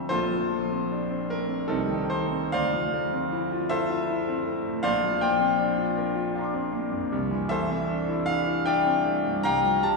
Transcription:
grand piano
Already playing: D2 F3 A3 C4 A4 C5 E5
0.09 A#1 F4 A4 C5
0.31 F3
0.51 A3
0.72 C4
0.92 D4
1.11 C4
1.30 A3 A#4
1.49 C4
1.68 C2 C4 D#4 A4
1.89 D#3
2.10 A3 C5
2.32 C4
2.52 D2 C5 D5 F5
2.73 F3
2.93 A3
3.14 C4
3.32 E4
3.51 F4
3.69 E4 A4 C5 E5
3.90 F4
4.10 E4
4.28 C4
4.47 A3
4.66 A2
4.83 A#1 C5 D5 F5
5.03 F3
5.21 A#3 C5 D5 G5
5.40 C4
5.59 D4
5.78 F4
5.97 A#4
6.15 F4
6.35 D4 F5 A#5
6.41 C6 D6
6.54 C4
6.72 A#3
6.92 F2
7.12 C2
7.31 E3
7.49 A3 A4 C5 E5
7.70 C4
7.89 D4
8.09 E4
8.26 D4 F5
8.47 E4
8.66 D4 D5 E5 G5
8.86 C4
9.05 A3
9.25 G2
9.43 C2 F5 G5 A#5
9.63 F3
9.83 G3 A5

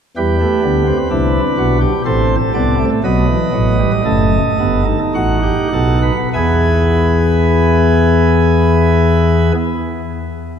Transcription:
pipe organ
0.17 E2 E3 G3 G4 B4
0.40 A3
0.63 D2 D3 B3
0.86 C4
1.10 C2 C3 D4 E4
1.58 B1 B2 F#4
1.81 G4
2.05 A1 A2 C4 A4 C5
2.54 C2 C3 B3 D5
2.79 A3
3.04 B1 B2 F#3 B4 D#5
3.28 E3
3.53 A1 A2 F#3
3.79 G3
4.05 F#1 F#2 A3 A4
4.59 G1 G2 B3
4.86 D#4
5.15 A1 A2 F#4 F#5
5.43 G4
5.72 B1 B2 A4
6.02 B4
6.33 E2 E3 B3 E4 G#4 B4 G#5

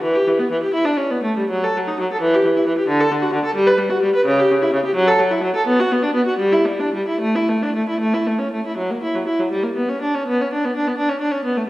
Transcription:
viola
0.02 E3
0.15 G4
0.28 E3
0.39 B3
0.51 E3
0.63 G4
0.74 E4
0.85 D4
0.97 C#4
1.11 B3
1.23 A3
1.37 G3
1.50 F#3
1.64 A4
1.77 F#3
1.88 D#4
2.01 F#3
2.13 A4
2.21 E3
2.34 G4
2.45 E3
2.57 E4
2.67 E3
2.78 G4
2.88 D3
3.00 A4
3.12 D3
3.22 F#4
3.33 D3
3.45 A4
3.55 G3
3.67 B4
3.78 G3
3.90 F#4
4.02 G3
4.15 B4
4.26 C#3
4.39 G4
4.51 C#3
4.62 E4
4.74 C#3
4.86 G4
4.95 F#3
5.08 A4
5.19 F#3
5.31 E4
5.44 F#3
5.56 A4
5.67 B3
5.80 F#4
5.92 B3
6.03 D4
6.15 B3
6.26 F#4
6.39 G3
6.53 E4
6.65 G3
6.80 D4
6.94 G3
7.08 E4
7.21 A3
7.35 E4
7.49 A3
7.62 D4
7.76 A3
7.89 E4
8.01 A3
8.14 E4
8.27 A3
8.39 C#4
8.53 A3
8.66 E4
8.77 F#3
8.91 A#3
9.03 E4
9.15 F#3
9.28 E4
9.39 F#3
9.51 G3
9.63 A#3
9.76 B3
9.89 C#4
10.02 D4
10.14 C#4
10.27 B3
10.41 C#4
10.53 D4
10.65 B3
10.76 D4
10.88 B3
10.98 D4
11.09 C#4
11.21 D4
11.32 C#4
11.45 B3
11.57 A3

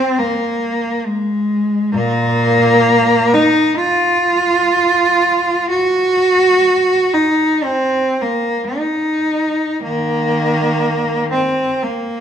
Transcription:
cello
Already playing: C4
0.19 A#3
1.06 G#3
1.94 A#2 A#3
3.33 D#4
3.78 F4
5.70 F#4
7.13 D#4
7.64 C4
8.21 A#3
8.78 D#4
9.82 D#3 A#3
11.32 C4
11.83 A#3

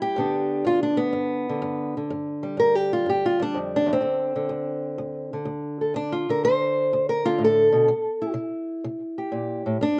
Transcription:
steel-string acoustic guitar
Already playing: C3 G3 E4
0.02 G4
0.16 G2 D3 B3 D4
0.65 G2 F4
0.83 D4
0.97 B3
1.13 G2
1.49 D3
1.62 G2
1.97 D3
2.10 G2
2.43 G3
2.57 G2 A#4
2.75 G4
2.93 F4
3.06 G2 G4
3.26 F4
3.40 G3 D4
3.54 F2
3.76 D4
3.86 E2
3.93 C4
4.01 D2 D3
4.36 D3
4.49 D2
4.98 D2
5.33 D3
5.45 D2
5.81 A4
5.94 D2 D4
6.12 F4
6.29 D3 A#4
6.44 D2 C5
6.93 D2
7.09 A#4
7.25 D3 F4
7.38 A2
7.44 A4
7.72 B2
7.88 C3
8.22 E4
8.34 C3
8.84 C3
9.18 G4
9.32 A#2
9.66 A2
9.81 G2 D4

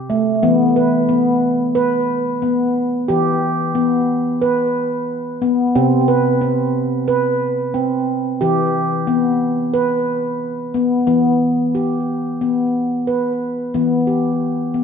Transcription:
handpan
Already playing: C3
0.10 A3
0.43 E3 B3
0.76 B4
1.09 B3
1.75 B4
2.42 B3
3.08 E3 G4
3.75 B3
4.42 B4
5.42 B3
5.75 C3 C4
6.08 B4
6.41 C4
7.08 B4
7.74 C4
8.41 E3 G4
9.07 B3
9.74 B4
10.74 B3
11.07 E3 B3
11.75 G4
12.41 B3
13.07 B4
13.74 E3 B3
14.07 G4
14.74 B3

